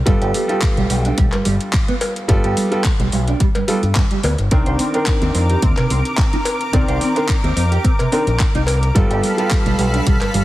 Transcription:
0.06 G1 G3 B3 F4 A4, kick, closed hi-hat
0.21 G1 G4, closed hi-hat
0.34 G3, open hi-hat
0.48 G3 B3 F4 G4 A4, closed hi-hat
0.61 kick, clap, closed hi-hat
0.77 B1 G3, closed hi-hat
0.90 B1 G3, open hi-hat
1.05 D4, closed hi-hat
1.18 B1 G3, kick, closed hi-hat
1.32 G2, clap, closed hi-hat, cowbell
1.45 G1 G3, open hi-hat
1.61 closed hi-hat
1.73 kick, clap, closed hi-hat
1.88 B3, closed hi-hat
2.01 open hi-hat, cowbell
2.16 closed hi-hat
2.28 G1 G3 B3 F4 A4, kick, closed hi-hat
2.44 G1 G4, closed hi-hat
2.57 G3, open hi-hat
2.71 G3 B3 F4 G4 A4, closed hi-hat
2.84 kick, clap, closed hi-hat
2.99 B1 G3, closed hi-hat
3.12 B1 G3, open hi-hat
3.28 D4, closed hi-hat
3.40 G3, kick, closed hi-hat
3.55 G2, closed hi-hat, cowbell
3.68 G3 B3 F4 A4, open hi-hat
3.83 G2, closed hi-hat
3.95 G2, kick, clap, closed hi-hat
4.11 G3, closed hi-hat
4.23 D2 B3, open hi-hat, cowbell
4.38 G1, closed hi-hat
4.51 C2 D#3 C4 D4 A#4 D6, kick, closed hi-hat
4.66 C2 C5, closed hi-hat
4.79 C4, open hi-hat
4.93 D#3 C4 D4 A#4 C5, closed hi-hat
5.06 kick, clap, closed hi-hat
5.22 D#2 C4, closed hi-hat
5.34 F2 C4, open hi-hat
5.50 G4, closed hi-hat
5.62 D#2 C4, kick, closed hi-hat
5.77 C3, clap, closed hi-hat, cowbell
5.90 C2 C4, open hi-hat
6.05 closed hi-hat
6.17 kick, clap, closed hi-hat
6.33 D#4, closed hi-hat
6.45 open hi-hat, cowbell
6.61 closed hi-hat
6.73 C2 D#3 C4 A#4 D5, kick, closed hi-hat
6.88 C2 C5, closed hi-hat
7.01 C4, open hi-hat
7.15 D#3 C4 D4 A#4 C5, closed hi-hat
7.28 kick, clap, closed hi-hat
7.44 D#2 C4, closed hi-hat
7.56 F2 C4, open hi-hat
7.72 G4, closed hi-hat
7.84 C4, kick, closed hi-hat
7.99 C3, closed hi-hat, cowbell
8.12 D#3 C4 D4 A#4, open hi-hat
8.27 A#1, closed hi-hat
8.40 kick, clap, closed hi-hat
8.55 C2 D#4, closed hi-hat
8.67 open hi-hat, cowbell
8.83 closed hi-hat
8.95 G1 G3 B3 F4 A4 F5 B5, kick, closed hi-hat
9.10 G1 G4, closed hi-hat
9.23 G3, open hi-hat
9.37 G3 B3 F4 G4 A4, closed hi-hat
9.51 kick, clap, closed hi-hat
9.66 B1 G3, closed hi-hat
9.79 B1 G3, open hi-hat
9.94 D4, closed hi-hat
10.06 B1 G3, kick, closed hi-hat
10.21 G2, clap, closed hi-hat, cowbell
10.34 G1 G3, open hi-hat

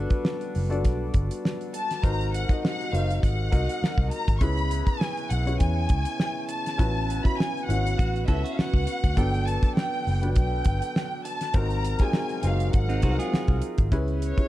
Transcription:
Already playing: G3 B3 D4 F#4 A4 B4
0.10 kick, closed hi-hat
0.25 snare
0.41 closed hi-hat
0.55 F#1, open hi-hat
0.70 D4 F#4 A4 D5, closed hi-hat
0.85 B1, kick, snare, closed hi-hat
1.14 G1, kick, closed hi-hat
1.31 closed hi-hat
1.45 snare
1.61 closed hi-hat
1.74 A5, closed hi-hat
1.91 snare, closed hi-hat
2.02 G#1 C3 G#3 D#4 F#4 A#4 C5 A#5, kick, closed hi-hat
2.21 closed hi-hat
2.34 F#5, closed hi-hat
2.49 D#4 F#4 A#4 D#5, kick, closed hi-hat
2.64 F#5, snare
2.81 closed hi-hat
2.92 F#1 D#4 F#4 A#4 C5 F5, closed hi-hat
3.11 closed hi-hat
3.23 G#1 F#5, kick, snare, closed hi-hat
3.51 C2 D#4 F#4 A#4 D#5, kick, closed hi-hat
3.69 closed hi-hat
3.82 muted fingered electric bass stroke, snare
3.98 C2, kick
4.11 A#5, closed hi-hat
4.28 G#1, kick, closed hi-hat
4.38 C#2 C#4 E4 C#6, kick, closed hi-hat
4.42 C#3 B3 E4 G#4 B4 B5
4.57 closed hi-hat
4.71 closed hi-hat
4.87 G#5, kick, closed hi-hat
5.01 snare
5.17 closed hi-hat
5.30 B1 F#5, closed hi-hat
5.46 C#4 E4 G#4 C#5, closed hi-hat
5.60 E2 G#5, kick, snare, closed hi-hat
5.89 C#2, kick, closed hi-hat
6.05 closed hi-hat
6.20 snare
6.49 A5, closed hi-hat
6.66 snare, closed hi-hat
6.78 A1 C#4 E4 F#4 B4, kick, closed hi-hat
7.10 closed hi-hat
7.24 C#4 E4 F#4 B4 B5, kick, closed hi-hat
7.37 G#5, snare
7.57 closed hi-hat
7.66 G#1 C#4 E4 F#4 B4 F#5
7.70 closed hi-hat
7.87 closed hi-hat
7.98 A1 F#4, kick, closed hi-hat
8.16 closed hi-hat
8.27 C#2 C#4 E4 F#4 A4 B4 E5, kick, closed hi-hat
8.44 F#4, closed hi-hat
8.53 F5
8.58 F#5, muted fingered electric bass stroke, snare
8.74 C#2, kick
8.87 closed hi-hat
9.04 D2, kick, snare, closed hi-hat
9.16 G1 D3 F#3 B3 D4 A4 B4 G5, kick, closed hi-hat
9.34 closed hi-hat
9.46 A5, closed hi-hat
9.63 kick, closed hi-hat
9.76 G5, snare
10.07 F#1, open hi-hat
10.22 F#3 B3 D4 B4, closed hi-hat
10.35 B1 G5, kick, closed hi-hat
10.65 G1, kick, closed hi-hat
10.82 closed hi-hat
10.96 snare
11.25 A5, closed hi-hat
11.41 snare, closed hi-hat
11.54 G#1 C3 F#3 G#3 C4 D#4 F#4 A#4 A#5, kick, closed hi-hat
11.70 closed hi-hat
11.85 closed hi-hat
11.99 C4 D#4 F#4 G#4 G#5, kick, closed hi-hat
12.13 snare
12.29 closed hi-hat
12.43 F#1 C4 D#4 F#4 A#4 F5, closed hi-hat
12.60 closed hi-hat
12.73 G#1 F#5, kick, closed hi-hat
12.89 C4 D#4, closed hi-hat
13.02 C2 F#3 C4 D#4 F#4 G#4, kick, closed hi-hat
13.11 A#4
13.19 F4 G#4, closed hi-hat
13.33 muted fingered electric bass stroke, snare
13.47 C2, kick, closed hi-hat
13.62 closed hi-hat
13.78 G#1, kick, closed hi-hat
13.92 C#2 C#3 B3 C#4 E4 G#4 B4, kick, closed hi-hat
14.08 closed hi-hat
14.22 C#5, closed hi-hat
14.38 C#4 E4 G#4 B4, kick, closed hi-hat

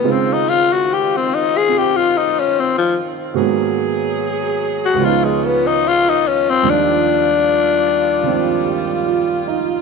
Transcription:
Already playing: D#3 B3
0.03 C#3 G#3 C4 D#4 F4
0.12 C4
0.33 D#4
0.49 F4
0.72 F#4
0.93 G4
1.17 C4
1.34 D#4
1.57 G#4
1.69 C4 F4 G4
1.78 G4
1.96 F4
2.18 D#4
2.39 C#4
2.60 C4
2.78 F3
3.34 G#2 D#3 F#3 A#3 B3 F#4 G#4
4.85 F#4
4.94 C#2 C#3 D#3 C#4 F4
5.00 F3 B3
5.05 D#4 F4
5.25 G#3
5.44 B3
5.67 D#4
5.88 F4
6.09 D#4
6.28 C#4
6.50 C4
6.62 D#2 D#3 F3 G3 D4 D5
6.70 D4
8.23 D#3 F3 C4
8.65 G4
9.07 F4
9.47 D#4

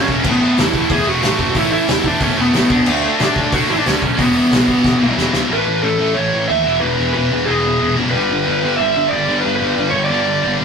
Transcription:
Already playing: F#2 C#3 F#3 C#4
0.08 E1 F#2 C#3 F#3, kick
0.24 A1 A2 E3 A3, kick, crash
0.30 B3
0.41 A2 E3 A3
0.57 E2 A2 E3 A3 E4, snare, open hi-hat
0.74 E2 A2 E3 A3, kick
0.90 E2 A2 E3 A3 G#4, kick, open hi-hat
1.06 E1 A2 E3 A3 F#4
1.22 A1 A2 E3 A3, snare, open hi-hat
1.39 F#1 A2 E3 A3, kick
1.54 A1 A2 E3 A3 E4, kick, open hi-hat
1.72 A2 E3 A3 E4
1.88 E2 A2 E3 A3, snare, open hi-hat
2.04 E2 A2 E3 A3 D4, kick
2.20 E2 A2 E3 A3 C#4, kick, open hi-hat
2.37 E1 A2 E3 A3 B3
2.53 A1 A2 E3 A3 B3, snare, open hi-hat
2.70 D2 D3 A3 D4, kick
2.86 D2 D3 A3 D4, crash
3.03 D3 A3 D4
3.19 A2 D3 A3 D4, snare, open hi-hat
3.35 A2 D3 A3 D4, kick
3.52 A2 D3 A3 D4 F#4, kick, open hi-hat
3.69 A1 D3 A3 D4 E4
3.78 D4
3.85 D2 D3 A3 C#4 D4, snare, open hi-hat
4.02 B1 D3 A3 D4, kick
4.19 E1 E2 B2 E3 B3, kick, open hi-hat
4.35 E2 B2 E3
4.51 B1 E2 B2 E3, snare, open hi-hat
4.67 B1 E2 B2 E3, kick
4.83 B1 E2 B2 E3, kick, snare
4.99 B1 E2 B2 E3
5.17 E1 E2 B2 E3, snare
5.33 D2 E2 B2 E3, snare
5.50 A1 A2 E3 A3 B4
5.67 A1 A2 E3
5.82 A1 A2 E3 A3 A4
5.98 A1 A2 E3 A3
6.14 A1 A2 E3 A3 C#5
6.33 A2 E3
6.48 D#2 A2 E3 A3 E5
6.65 E1 E2 B2 E3
6.80 E1 E2 B2 E3 B4
6.97 E1 E2 B2 E3
7.13 E1 E2 B2 E3 B4
7.31 E1 E2 B2 E3
7.45 E1 E2 G#4
7.50 B2 E3
7.65 E2 B2
7.79 E1 E2 B2 E3
7.96 F#1 E2 B2 E3
8.11 G1 G2 B4
8.15 G2 D3 G3
8.30 G1 G2 D3
8.46 G1 G2 D3 G3
8.63 G1 G2 D3 G3
8.77 G1 G2 D3 G3 E5
8.96 G2 D3
9.08 G2 G3 D5
9.13 G1 D3
9.28 G1 G2 D3 G3
9.40 B4
9.45 G1 G2 D3 G3
9.56 B4
9.61 G1 G2 D3 G3
9.77 G1 G2 D3 G3
9.91 G1 G2 G3 C#5
9.95 D3
10.04 D5
10.10 G1 G2 D3 G3
10.27 G2 D3
10.43 G1 G2 D3 G3
10.59 G1 G2 D3 G3

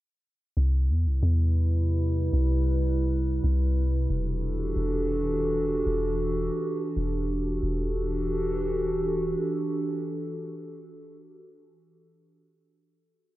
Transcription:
0.57 C2 C3 G3 E4 B4
0.90 E2
1.06 C2
1.23 E2
2.33 C2
3.44 C2
4.10 E1 E3 D4 F#4 G4 A4
4.76 E1
5.86 E1
6.97 E1
7.63 E1 E3 D4 F#4 G4 A4

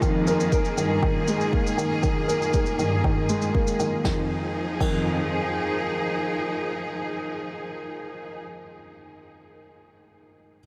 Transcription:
Already playing: D#3
0.02 F2 D#3 A#3 G#4, kick, shaker
0.27 A#4, shaker
0.40 shaker
0.52 A#4, kick, shaker
0.65 shaker
0.77 G2 D#3, shaker
1.03 D#3, kick
1.28 G#3, shaker
1.41 shaker
1.53 A#3, kick
1.67 shaker
1.78 D#3, shaker
2.03 D#3, kick, shaker
2.28 A#4, shaker
2.42 shaker
2.53 A#4, kick, shaker
2.66 shaker
2.79 G2 D#3, shaker
3.04 D#3, kick
3.29 G#3, shaker
3.42 shaker
3.54 A#3, kick
3.67 shaker
3.80 D#3, shaker
4.05 F2 D#3 F3 D#4 G#4, kick, snare
4.80 F2 D#3, kick, crash

